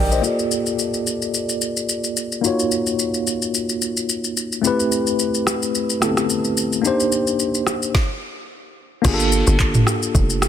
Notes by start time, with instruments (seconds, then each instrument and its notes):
Already playing: log drum bass A#1, tine electric piano D4 D#4 G4 A#4 C5 D5 D#5 G5
0.11 tine electric piano C5 D#5, shaker
0.21 tine electric piano A#3 F4 G4, shaker
0.26 tine electric piano A4 D5
0.39 shaker
0.51 shaker
0.66 shaker
0.79 shaker
0.94 shaker
1.07 shaker
1.22 shaker
1.34 shaker
1.49 shaker
1.61 shaker
1.77 shaker
1.89 shaker
2.04 shaker
2.17 shaker
2.32 shaker
2.41 tine electric piano A#3 D#4 F4, shaker
2.46 tine electric piano F#4 C#5
2.59 shaker
2.72 shaker
2.87 shaker
2.99 shaker
3.14 shaker
3.27 shaker
3.42 shaker
3.54 shaker
3.69 shaker
3.82 shaker
3.97 shaker
4.09 shaker
4.24 shaker
4.37 shaker
4.52 shaker
4.62 tine electric piano A3 C4 E4, shaker
4.66 tine electric piano G4 B4
4.80 shaker
4.92 shaker
5.07 shaker
5.19 shaker
5.34 shaker
5.47 cross-stick, shaker
5.62 shaker
5.75 shaker
5.90 shaker
6.00 tine electric piano A3 B3 E4 G4 A4, cross-stick, shaker
6.08 tine electric piano C4
6.17 cross-stick, shaker
6.30 shaker
6.44 shaker
6.57 shaker
6.73 shaker
6.82 tine electric piano A#3 D4 D#4, shaker
6.86 tine electric piano G4 C5
7.00 shaker
7.12 shaker
7.27 shaker
7.39 shaker
7.55 shaker
7.67 cross-stick, shaker
7.82 shaker
7.95 kick, snare
9.02 log drum bass G1, tine electric piano A#3 D4 F4, kick, crash, shaker
9.06 tine electric piano G4 G#4
9.14 tine electric piano A4
9.20 shaker
9.32 shaker
9.47 log drum bass G1, shaker
9.59 kick, clap, shaker
9.74 mid tom, shaker
9.87 cross-stick, shaker
10.03 shaker
10.15 log drum bass F1, kick, shaker
10.30 shaker
10.42 cross-stick, shaker